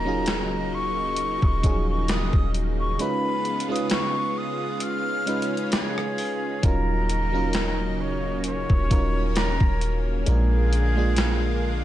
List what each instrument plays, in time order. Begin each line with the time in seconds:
Already playing: 808-style bass D#1, analog synth pad C#3 F#3 A#3 D#4, fm electric piano F#3 C#4 D#4 F4 A#4, flute A#5
0.05 fm electric piano F#3 C#4 D#4 F4 G#4
0.26 snare, closed hi-hat
0.74 flute C#6
1.16 closed hi-hat
1.42 808-style bass D#1, kick
1.62 808-style bass D#1, fm electric piano F3 C#4 D#4 F4 G#4, kick, closed hi-hat
1.69 fm electric piano F#3
1.90 flute C#6
2.08 flute D#6, snare, closed hi-hat
2.33 808-style bass D#1, kick
2.54 closed hi-hat
2.80 flute C#6
2.99 fm electric piano G#3 C#4 D#4 F4 B4, analog synth pad G#3 B3 F4, flute B5, closed hi-hat
3.45 closed hi-hat
3.60 closed hi-hat
3.68 fm electric piano G#3 C#4 D#4 F4 B4, flute D#6
3.76 closed hi-hat
3.90 flute C#6, snare, closed hi-hat
4.38 flute D#6
4.80 analog synth pad C#4, flute F6, closed hi-hat
5.26 fm electric piano G#3 C#4 D#4 F4 B4, closed hi-hat
5.42 closed hi-hat
5.57 closed hi-hat
5.72 flute G#4, snare, closed hi-hat
5.98 cross-stick
6.18 open hi-hat
6.62 808-style bass D#1, analog synth pad C#3 F#3 A#3 D#4, fm electric piano F#3 C#4 D#4 F4 A#4, flute A#4, kick, closed hi-hat
7.09 closed hi-hat
7.32 fm electric piano F#3 C#4 D#4 F4 A#4
7.53 snare, closed hi-hat
8.01 flute C#5
8.44 analog synth pad C#4, flute C#5, closed hi-hat
8.70 808-style bass D#1, kick
8.89 808-style bass D#1, fm electric piano F#3 C#4 D#4 F4 A#4, kick, closed hi-hat
9.36 flute A#4, snare, closed hi-hat
9.60 808-style bass D#1, kick
9.81 closed hi-hat
10.26 808-style bass A#1, analog synth pad D3 G#3 F4, fm electric piano G#3 A#3 D4 F4 A#4, flute G#4, closed hi-hat
10.73 closed hi-hat
10.95 fm electric piano G#3 A#3 D4 F4 G#4
11.16 snare, closed hi-hat